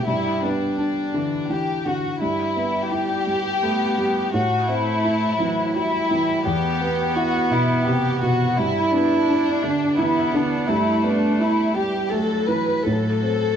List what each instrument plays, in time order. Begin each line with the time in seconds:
0.06 grand piano G2, cello G3, violin section E4
0.43 grand piano B3, violin section D4
0.78 grand piano D4
1.14 grand piano D3, cello E3
1.50 grand piano E3, violin section G4
1.85 grand piano D3, violin section F#4
2.21 grand piano G2, violin section E4
2.56 cello G3, grand piano B3
2.91 grand piano E4, violin section G4
3.27 grand piano G3
3.63 grand piano A3, cello B3
3.98 grand piano G3
4.33 grand piano A2, cello A3, violin section F#4
4.68 grand piano C4, violin section E4
5.05 grand piano E4
5.38 grand piano E3, cello F#3
5.74 cello G3, violin section E4, grand piano F#4
6.11 grand piano E3
6.44 grand piano E2, cello B3, violin section G4
6.81 grand piano B3
7.15 grand piano E4, violin section F#4
7.51 grand piano B2, violin section E4
7.85 grand piano C3, violin section G4
8.21 grand piano B2, violin section F#4
8.57 grand piano G2, cello E4, violin section E4
8.93 grand piano B3, violin section D4
9.29 grand piano D4
9.63 grand piano D3, cello D4
9.98 grand piano E3, cello B3, violin section E4
10.34 grand piano D3, violin section D4
10.68 grand piano G2, cello A3, violin section E4
11.04 grand piano B3, violin section D4
11.40 violin section E4, grand piano E4
11.76 grand piano G3, cello G3, violin section G4
12.11 cello F#3, grand piano A3, violin section A4
12.47 grand piano E3, violin section B4
12.86 grand piano A2, cello F#3, violin section A4
13.23 grand piano C4